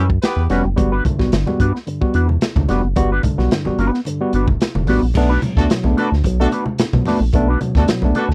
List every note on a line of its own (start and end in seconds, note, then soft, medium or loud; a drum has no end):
0.00 0.19 F#2 loud
0.10 muted clean electric guitar stroke medium
0.10 kick medium
0.22 0.45 B3 loud
0.22 0.44 G4 loud
0.22 0.44 B4 loud
0.22 snare loud
0.22 closed hi-hat loud
0.36 0.48 E2 loud
0.36 muted clean electric guitar stroke soft
0.50 0.63 F1 medium
0.50 0.63 G3 medium
0.50 0.68 G3 medium
0.50 0.63 B3 medium
0.50 0.63 C#4 medium
0.50 0.65 C#4 medium
0.50 0.63 F#4 loud
0.50 0.64 F#4 medium
0.50 0.64 B4 medium
0.50 snare soft
0.50 closed hi-hat medium
0.64 0.76 F#1 medium
0.64 muted clean electric guitar stroke medium
0.76 1.01 G1 loud
0.76 0.90 G3 medium
0.76 0.90 B3 medium
0.76 0.90 F#4 medium
0.76 muted clean electric guitar stroke soft
0.76 kick loud
0.76 closed hi-hat medium
0.76 muted conga soft
0.76 low conga medium
0.92 1.04 B3 medium
0.92 1.05 D4 medium
0.92 1.05 F#4 medium
0.92 1.05 B4 medium
1.05 1.18 G2 medium
1.05 1.18 D3 medium
1.05 kick loud
1.05 closed hi-hat medium
1.05 muted conga soft
1.05 high conga medium
1.18 1.31 B1 medium
1.18 1.31 G3 medium
1.18 1.31 B3 medium
1.18 1.31 F#4 medium
1.18 muted clean electric guitar stroke soft
1.18 kick medium
1.18 snare soft
1.32 1.45 G1 loud
1.32 1.46 G2 medium
1.32 1.46 D3 medium
1.32 snare loud
1.32 closed hi-hat loud
1.32 muted conga soft
1.46 1.58 G3 medium
1.46 1.58 B3 medium
1.46 1.59 F#4 medium
1.46 muted clean electric guitar stroke medium
1.46 high conga medium
1.46 low conga medium
1.60 1.72 G2 medium
1.60 1.66 B3 soft
1.60 1.77 B3 medium
1.60 1.75 D4 medium
1.60 1.66 F#4 soft
1.60 1.74 F#4 loud
1.60 1.74 B4 medium
1.60 kick medium
1.60 closed hi-hat medium
1.60 muted conga soft
1.75 muted clean electric guitar stroke soft
1.75 snare soft
1.87 2.00 G2 medium
1.87 2.00 D3 medium
1.87 muted clean electric guitar stroke soft
1.87 closed hi-hat medium
2.01 2.13 G3 medium
2.01 2.13 B3 medium
2.01 2.13 F#4 medium
2.01 kick loud
2.14 2.38 E2 loud
2.14 2.28 B3 medium
2.14 2.21 B3 soft
2.14 2.28 D4 medium
2.14 2.21 F#4 soft
2.14 2.29 F#4 medium
2.14 2.29 B4 medium
2.14 closed hi-hat medium
2.29 muted clean electric guitar stroke soft
2.29 high conga medium
2.41 2.48 B3 soft
2.41 2.48 F#4 soft
2.41 snare loud
2.41 closed hi-hat loud
2.41 muted conga soft
2.56 2.67 D2 loud
2.56 2.68 G2 medium
2.56 2.68 D3 medium
2.56 muted clean electric guitar stroke soft
2.56 kick medium
2.56 high conga loud
2.68 2.82 F1 medium
2.68 2.82 G3 medium
2.68 2.82 B3 medium
2.68 2.87 B3 medium
2.68 2.84 D4 medium
2.68 2.82 F#4 medium
2.68 2.83 F#4 medium
2.68 2.82 B4 loud
2.68 snare soft
2.68 closed hi-hat medium
2.68 muted conga soft
2.68 low conga medium
2.83 2.95 F#1 loud
2.83 muted clean electric guitar stroke soft
2.96 3.20 G1 loud
2.96 3.09 G3 medium
2.96 3.10 B3 medium
2.96 3.10 F#4 loud
2.96 muted clean electric guitar stroke medium
2.96 kick loud
2.96 closed hi-hat medium
2.96 low conga medium
3.12 3.22 B3 medium
3.12 3.23 D4 medium
3.12 3.24 F#4 medium
3.12 3.23 B4 medium
3.23 3.37 G2 medium
3.23 3.37 D3 medium
3.23 kick medium
3.23 closed hi-hat medium
3.23 muted conga soft
3.23 high conga medium
3.38 3.49 B1 medium
3.38 3.50 G3 medium
3.38 3.50 B3 medium
3.38 3.50 F#4 medium
3.38 muted clean electric guitar stroke medium
3.38 snare soft
3.51 3.64 G2 medium
3.51 3.64 D3 medium
3.51 snare loud
3.51 closed hi-hat medium
3.51 muted conga soft
3.65 3.71 G1 soft
3.65 3.77 G3 medium
3.65 3.77 B3 medium
3.65 3.78 F#4 medium
3.65 muted clean electric guitar stroke soft
3.65 high conga medium
3.65 low conga medium
3.78 3.91 G1 medium
3.78 3.99 B3 medium
3.78 3.85 B3 soft
3.78 3.93 D4 medium
3.78 3.85 F#4 soft
3.78 3.92 F#4 loud
3.78 3.92 B4 loud
3.78 closed hi-hat medium
3.93 muted clean electric guitar stroke soft
3.93 snare soft
4.05 4.19 G2 medium
4.05 4.19 D3 medium
4.05 muted clean electric guitar stroke soft
4.05 closed hi-hat loud
4.05 muted conga soft
4.20 4.32 G3 medium
4.20 4.32 B3 medium
4.20 4.32 F#4 medium
4.33 4.57 G1 loud
4.33 4.40 B3 soft
4.33 4.47 B3 medium
4.33 4.48 D4 medium
4.33 4.39 F#4 soft
4.33 4.48 F#4 medium
4.33 4.47 B4 medium
4.33 closed hi-hat medium
4.33 muted conga soft
4.48 muted clean electric guitar stroke soft
4.48 kick loud
4.48 high conga medium
4.61 4.67 B3 soft
4.61 4.67 F#4 medium
4.61 snare loud
4.61 closed hi-hat loud
4.75 4.86 E1 loud
4.75 4.87 G2 medium
4.75 4.87 D3 medium
4.75 muted clean electric guitar stroke medium
4.75 high conga loud
4.87 5.00 A1 medium
4.87 5.01 G3 medium
4.87 5.05 B3 medium
4.87 5.01 B3 medium
4.87 5.03 D4 loud
4.87 5.01 F#4 medium
4.87 5.03 F#4 loud
4.87 5.02 B4 medium
4.87 snare soft
4.87 open hi-hat medium
4.87 muted conga soft
4.87 low conga medium
5.02 5.13 A#1 medium
5.02 muted clean electric guitar stroke medium
5.14 5.39 B1 loud
5.14 5.29 A3 medium
5.14 5.29 B3 medium
5.14 5.29 D4 loud
5.14 muted clean electric guitar stroke soft
5.14 kick loud
5.14 crash medium
5.14 low conga medium
5.29 5.41 A3 medium
5.29 5.42 D4 medium
5.29 5.42 F#4 medium
5.29 5.42 B4 loud
5.42 5.56 B2 medium
5.42 5.56 F#3 medium
5.42 closed hi-hat medium
5.42 muted conga soft
5.42 high conga medium
5.57 5.68 D2 medium
5.57 5.69 A3 medium
5.57 5.69 B3 medium
5.57 5.65 D4 medium
5.57 5.69 D4 medium
5.57 5.65 F#4 medium
5.57 5.65 A4 medium
5.57 muted clean electric guitar stroke soft
5.57 kick medium
5.57 snare soft
5.70 5.84 B2 medium
5.70 5.83 F#3 medium
5.70 snare loud
5.70 closed hi-hat loud
5.70 muted conga soft
5.84 5.95 B1 medium
5.84 5.96 A3 medium
5.84 5.96 B3 medium
5.84 5.96 D4 medium
5.84 muted clean electric guitar stroke soft
5.84 high conga medium
5.84 low conga medium
5.97 6.14 A3 medium
5.97 6.03 B3 soft
5.97 6.06 D4 medium
5.97 6.12 D4 medium
5.97 6.03 D4 soft
5.97 6.07 F#4 medium
5.97 6.11 F#4 medium
5.97 6.07 A4 medium
5.97 6.11 B4 loud
5.97 closed hi-hat medium
6.12 6.23 D2 medium
6.12 muted clean electric guitar stroke soft
6.12 snare soft
6.24 6.48 B1 loud
6.24 6.38 B2 medium
6.24 6.38 F#3 medium
6.24 muted clean electric guitar stroke soft
6.24 kick medium
6.24 closed hi-hat medium
6.24 muted conga soft
6.39 6.50 A3 medium
6.39 6.51 B3 medium
6.39 6.47 D4 loud
6.39 6.51 D4 medium
6.39 6.47 F#4 loud
6.39 6.47 A4 loud
6.52 6.65 A3 medium
6.52 6.58 B3 soft
6.52 6.65 D4 medium
6.52 6.58 D4 soft
6.52 6.66 F#4 medium
6.52 6.65 B4 medium
6.52 closed hi-hat medium
6.52 muted conga soft
6.66 high conga medium
6.78 6.85 B2 soft
6.78 6.86 B3 soft
6.78 6.85 D4 medium
6.78 snare loud
6.78 closed hi-hat loud
6.93 7.04 B2 loud
6.93 7.05 B2 medium
6.93 7.05 F#3 medium
6.93 muted clean electric guitar stroke soft
6.93 kick medium
6.93 high conga medium
7.06 7.23 A3 medium
7.06 7.20 A3 medium
7.06 7.20 B3 medium
7.06 7.22 D4 medium
7.06 7.20 D4 medium
7.06 7.21 F#4 loud
7.06 7.21 B4 medium
7.06 snare soft
7.06 open hi-hat medium
7.06 muted conga soft
7.06 low conga medium
7.20 7.31 A#1 medium
7.20 muted clean electric guitar stroke soft
7.33 7.57 B1 loud
7.33 7.47 A3 medium
7.33 7.47 B3 medium
7.33 7.47 D4 loud
7.33 muted clean electric guitar stroke medium
7.33 kick loud
7.33 closed hi-hat medium
7.33 muted conga soft
7.33 low conga medium
7.48 7.60 A3 medium
7.48 7.60 D4 medium
7.48 7.61 F#4 medium
7.48 7.61 B4 medium
7.61 7.74 B2 medium
7.61 7.74 F#3 medium
7.61 muted clean electric guitar stroke soft
7.61 closed hi-hat medium
7.61 muted conga soft
7.61 high conga medium
7.75 7.86 D2 loud
7.75 7.87 A3 medium
7.75 7.87 B3 medium
7.75 7.84 D4 medium
7.75 7.87 D4 medium
7.75 7.84 F#4 medium
7.75 7.84 A4 medium
7.75 muted clean electric guitar stroke medium
7.75 kick medium
7.75 snare soft
7.88 8.02 B2 medium
7.88 8.02 F#3 medium
7.88 snare loud
7.88 closed hi-hat loud
7.88 muted conga soft
8.02 8.13 B1 medium
8.02 8.14 A3 medium
8.02 8.14 B3 medium
8.02 8.15 D4 medium
8.02 muted clean electric guitar stroke soft
8.02 high conga medium
8.02 low conga medium
8.15 8.32 A3 medium
8.15 8.22 B3 soft
8.15 8.24 D4 medium
8.15 8.31 D4 medium
8.15 8.22 D4 soft
8.15 8.24 F#4 medium
8.15 8.30 F#4 medium
8.15 8.24 A4 loud
8.15 8.30 B4 loud
8.15 closed hi-hat medium
8.15 muted conga soft
8.29 8.34 D2 medium
8.29 muted clean electric guitar stroke soft
8.29 snare soft